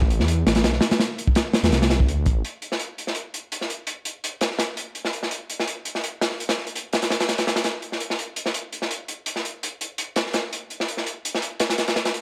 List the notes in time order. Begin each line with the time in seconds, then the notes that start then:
Already playing: A1
0.02 kick
0.10 closed hi-hat
0.19 E2, snare
0.28 closed hi-hat
0.46 A1, snare, closed hi-hat
0.55 snare, closed hi-hat
0.64 B1, snare, closed hi-hat
0.73 snare
0.81 snare, closed hi-hat
0.91 snare, closed hi-hat
1.00 snare, closed hi-hat
1.18 closed hi-hat
1.27 kick
1.35 snare, closed hi-hat
1.53 snare, closed hi-hat
1.63 E2, snare, closed hi-hat
1.72 C2, snare, closed hi-hat
1.82 snare, closed hi-hat
1.90 snare, closed hi-hat
2.00 kick
2.08 D2, closed hi-hat
2.26 A1, kick, closed hi-hat
2.45 closed hi-hat
2.62 closed hi-hat
2.72 snare
2.80 closed hi-hat
2.98 closed hi-hat
3.07 snare
3.15 closed hi-hat
3.34 closed hi-hat
3.52 closed hi-hat
3.61 snare
3.70 closed hi-hat
3.87 closed hi-hat
4.05 closed hi-hat
4.24 closed hi-hat
4.41 snare, closed hi-hat
4.51 snare
4.59 snare, closed hi-hat
4.77 closed hi-hat
4.95 closed hi-hat
5.05 snare
5.13 closed hi-hat
5.23 snare
5.31 closed hi-hat
5.50 closed hi-hat
5.60 snare
5.68 closed hi-hat
5.85 closed hi-hat
5.95 snare
6.04 closed hi-hat
6.21 snare, closed hi-hat
6.31 snare
6.40 closed hi-hat
6.49 snare, closed hi-hat
6.58 snare
6.67 closed hi-hat
6.75 closed hi-hat
6.93 snare, closed hi-hat
7.02 snare, closed hi-hat
7.10 snare, closed hi-hat
7.20 snare, closed hi-hat
7.29 snare, closed hi-hat
7.38 snare, closed hi-hat
7.47 snare, closed hi-hat
7.56 snare, closed hi-hat
7.64 snare, closed hi-hat
7.82 closed hi-hat
7.92 snare
8.00 closed hi-hat
8.10 snare
8.19 closed hi-hat
8.36 closed hi-hat
8.46 snare
8.54 closed hi-hat
8.73 closed hi-hat
8.82 snare
8.91 closed hi-hat
9.08 closed hi-hat
9.26 closed hi-hat
9.36 snare
9.45 closed hi-hat
9.63 closed hi-hat
9.81 closed hi-hat
9.98 closed hi-hat
10.16 snare, closed hi-hat
10.26 snare
10.33 snare, closed hi-hat
10.53 closed hi-hat
10.70 closed hi-hat
10.80 snare
10.88 closed hi-hat
10.97 snare
11.06 closed hi-hat
11.25 closed hi-hat
11.35 snare
11.42 closed hi-hat
11.60 snare, closed hi-hat
11.70 snare, closed hi-hat
11.78 snare, closed hi-hat
11.88 snare, closed hi-hat
11.96 snare, closed hi-hat
12.05 snare, closed hi-hat
12.14 closed hi-hat